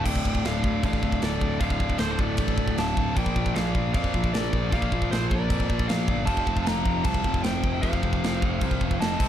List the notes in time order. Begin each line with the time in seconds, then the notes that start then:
0.04 D1 D2 A2 D3 G5, kick, crash
0.10 D5
0.16 kick
0.25 D1, kick
0.35 kick
0.44 D1 D5 F5, snare, crash
0.64 D1, kick
0.83 A1 D5 F5, kick, crash
0.93 kick
1.03 D1, kick
1.12 kick
1.21 D1 A4 D5, snare, crash
1.41 D1, kick
1.60 D1 D2 A2 D3 D5 F5, kick, crash
1.70 kick
1.80 D1, kick
1.90 kick
1.98 D1 A4 C5, snare, crash
2.11 A4 C5
2.19 D1 A4 D5, kick
2.37 A1, kick, crash
2.48 kick
2.58 D1, kick
2.68 kick
2.77 D1 F5 A5, snare, crash
2.97 D1, kick
3.14 A#1 A#2 F3 A#3 D5 G5, kick, crash
3.26 kick
3.36 A#1, kick
3.46 kick
3.54 A#1 D5 F5, snare, crash
3.75 A#1, kick
3.94 F2 D5 F5, kick, crash
4.04 kick
4.14 A#1, kick
4.24 kick
4.33 A#1 A#4 D5, snare, crash
4.53 A#1, kick
4.71 A#1 A#2 F3 A#3 D5 F5, kick, crash
4.82 kick
4.92 A#1, kick
5.02 kick
5.11 A#1 F4 C5, snare, crash
5.31 A#1 A#4 D5, kick
5.50 F2, kick, crash
5.60 kick
5.70 A#1, kick
5.79 kick
5.88 A#1 D5 F5, snare, crash
6.08 G1, kick
6.26 F1 F2 C3 F3 F5 A5, kick, crash
6.37 kick
6.47 F1, kick
6.57 kick
6.66 F1 F5 A#5, snare, crash
6.86 F1, kick
7.03 C2 F5 A5, kick, crash
7.14 kick
7.24 F1, kick
7.34 kick
7.43 F1 C5 G5, snare, crash
7.64 F1, kick
7.82 F1 F2 C3 F3 C5 F5, kick, crash
7.93 kick
8.03 F1, kick
8.13 kick
8.24 F1, snare, crash
8.42 F1, kick
8.61 C2, kick, crash
8.71 kick
8.81 F1, kick
8.91 kick
9.00 F1 D#5 A5, snare, crash
9.19 C2 C3 G3 C4, kick, crash